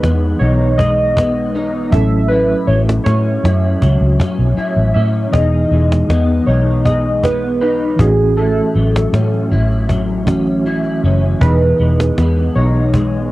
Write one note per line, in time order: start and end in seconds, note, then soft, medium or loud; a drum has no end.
0.00 0.33 E2 medium
0.00 1.87 E3 medium
0.00 2.72 E3 medium
0.00 0.78 G#3 medium
0.00 1.88 B3 medium
0.00 1.16 B3 medium
0.00 0.40 D#4 medium
0.00 1.89 D#4 medium
0.00 1.90 G#4 medium
0.00 0.44 B4 loud
0.00 cajon slap medium
0.39 1.88 B1 medium
0.39 1.54 D#4 medium
0.39 0.79 C#5 medium
0.39 cajon slap soft
0.78 2.00 G#3 medium
0.78 1.95 D#5 loud
0.78 cajon bass medium
1.17 2.00 B3 medium
1.17 cajon bass medium
1.17 cajon slap medium
1.55 2.00 D#4 medium
1.55 cajon slap soft
1.90 2.53 A1 medium
1.90 2.30 A2 medium
1.90 4.91 F#3 medium
1.90 4.92 C#4 medium
1.90 4.93 E4 medium
1.90 2.27 E5 medium
1.90 cajon bass medium
1.95 4.93 A4 medium
2.28 5.34 A2 medium
2.28 3.44 E4 medium
2.28 2.68 B4 loud
2.28 cajon slap soft
2.67 2.98 A1 medium
2.67 3.81 F#3 soft
2.67 2.81 C#5 medium
2.67 cajon slap soft
2.89 cajon slap medium
3.04 3.36 A2 medium
3.04 4.18 C#4 medium
3.04 5.00 C#5 medium
3.04 cajon slap medium
3.44 3.74 F#2 medium
3.44 4.57 E4 medium
3.44 cajon slap medium
3.82 3.97 C#2 medium
3.82 5.41 F#3 medium
3.82 cajon bass medium
4.01 4.16 C#2 medium
4.19 4.94 C#4 medium
4.19 cajon bass medium
4.19 cajon slap medium
4.39 4.54 B1 medium
4.57 5.34 E4 medium
4.57 cajon slap soft
4.76 4.92 A1 medium
4.94 5.26 A2 medium
4.94 5.41 C#4 medium
4.94 5.08 E5 medium
4.94 cajon slap soft
5.31 5.64 E1 medium
5.31 7.94 E3 medium
5.31 8.79 E3 medium
5.31 7.95 B3 medium
5.31 7.96 D#4 soft
5.31 6.46 D#4 medium
5.31 6.50 D#5 medium
5.31 cajon bass loud
5.36 7.96 G#4 medium
5.71 6.02 E1 medium
5.71 6.85 G#3 medium
5.71 cajon slap soft
5.92 cajon slap medium
6.09 6.39 E2 medium
6.09 7.22 B3 medium
6.09 cajon slap medium
6.46 7.95 B1 medium
6.46 7.60 D#4 medium
6.46 6.86 C#5 medium
6.46 cajon slap soft
6.85 8.07 G#3 medium
6.85 7.24 D#5 medium
6.85 cajon bass medium
7.23 8.07 B3 medium
7.23 7.60 B4 medium
7.23 cajon bass medium
7.23 cajon slap medium
7.61 8.07 D#4 medium
7.61 8.00 B4 medium
7.61 cajon slap soft
7.96 8.60 A1 medium
7.96 8.36 A2 medium
7.96 10.22 E3 medium
7.96 10.23 A3 medium
7.96 8.06 C4 soft
7.96 8.39 G#4 medium
7.96 cajon bass loud
8.01 10.24 F#4 medium
8.05 10.26 C#4 medium
8.37 11.41 A2 medium
8.37 9.51 E4 medium
8.37 9.47 A4 medium
8.37 cajon slap soft
8.57 cajon slap soft
8.75 9.06 A1 medium
8.75 9.88 F#3 medium
8.75 cajon slap soft
8.96 cajon slap loud
9.13 9.53 A2 medium
9.13 10.27 C#4 medium
9.13 cajon slap medium
9.33 cajon slap soft
9.51 10.99 A1 medium
9.51 10.66 E4 medium
9.51 cajon slap soft
9.71 cajon slap soft
9.89 11.49 F#3 medium
9.89 cajon bass medium
10.09 cajon slap soft
10.26 11.39 E3 medium
10.26 11.41 A3 medium
10.26 11.41 C#4 medium
10.26 11.03 C#4 medium
10.26 11.42 F#4 medium
10.26 cajon bass medium
10.26 cajon slap medium
10.46 cajon slap soft
10.66 11.43 E4 medium
10.66 cajon slap soft
10.84 cajon slap soft
11.04 11.34 F#1 medium
11.04 11.50 C#4 medium
11.04 cajon slap soft
11.22 cajon slap soft
11.40 11.72 E1 loud
11.40 13.32 E3 medium
11.40 13.32 B3 medium
11.40 13.32 D#4 soft
11.40 12.55 D#4 medium
11.40 12.51 B4 medium
11.40 cajon bass loud
11.45 13.32 G#4 medium
11.61 cajon slap soft
11.79 12.10 E1 medium
11.79 12.93 G#3 medium
11.79 cajon slap soft
12.00 cajon slap medium
12.18 12.48 E2 medium
12.18 13.31 B3 medium
12.18 cajon slap medium
12.37 cajon slap soft
12.55 13.32 B1 medium
12.55 13.32 D#4 medium
12.55 13.32 C#5 medium
12.55 cajon slap soft
12.75 cajon slap soft
12.94 13.32 G#3 medium
12.94 cajon bass medium
13.14 cajon slap soft